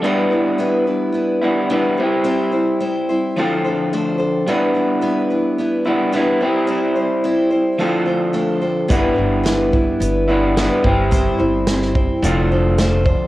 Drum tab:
HH |----------------|----------------|----------------|----------------|
SD |----------------|----------------|----------------|----------------|
BD |----------------|----------------|----------------|----------------|

HH |x---x---x---x---|x---x---x---x---|
SD |----o-------o---|----oo------o---|
BD |o-----o-------o-|o-----o-------o-|